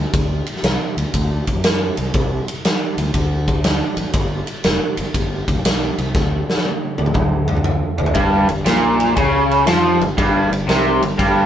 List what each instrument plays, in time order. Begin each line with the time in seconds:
0.13 fingered electric bass D2, kick, ride
0.46 ride
0.56 snare
0.63 fingered electric bass C2, snare, ride
0.97 fingered electric bass D2, ride
1.14 fingered electric bass D2, kick, ride
1.47 fingered electric bass A1, kick, ride
1.56 fingered electric bass F#2
1.64 snare, ride
1.97 fingered electric bass C2, ride
2.14 fingered electric bass C2, kick, ride
2.48 ride
2.65 snare, ride
2.97 fingered electric bass D2, ride
3.14 fingered electric bass D2, kick, ride
3.48 kick, ride
3.64 snare, ride
3.97 fingered electric bass A1, ride
4.13 fingered electric bass G1, kick, ride
4.47 ride
4.64 fingered electric bass F1, snare, ride
4.97 fingered electric bass G1, ride
5.14 fingered electric bass G1, kick, ride
5.48 fingered electric bass D2, kick, ride
5.57 fingered electric bass B1
5.65 snare, ride
5.98 fingered electric bass C2, ride
6.15 fingered electric bass D2, kick, snare
6.50 snare
6.58 snare
6.65 high tom
6.98 fingered electric bass D2, high tom
7.06 mid tom
7.14 fingered electric bass D2, kick, mid tom
7.48 mid tom
7.56 mid tom
7.64 mid tom
7.98 fingered electric bass D2, floor tom
8.06 floor tom
8.15 fingered electric bass G1, overdriven electric guitar G2, kick, ride
8.49 fingered electric bass G1, overdriven electric guitar G2, ride
8.66 fingered electric bass A#1, overdriven electric guitar A#2, snare, ride
9.00 ride
9.16 fingered electric bass C#2, overdriven electric guitar C#3, kick, ride
9.51 ride
9.67 fingered electric bass F2, overdriven electric guitar F3, snare, ride
10.01 fingered electric bass G1, overdriven electric guitar G2, ride
10.18 fingered electric bass G1, overdriven electric guitar G2, kick, ride
10.51 fingered electric bass G1, overdriven electric guitar G2, ride
10.67 fingered electric bass C2, overdriven electric guitar C3, snare, ride
11.02 fingered electric bass G1, overdriven electric guitar G2, ride
11.18 fingered electric bass G1, overdriven electric guitar G2, kick, ride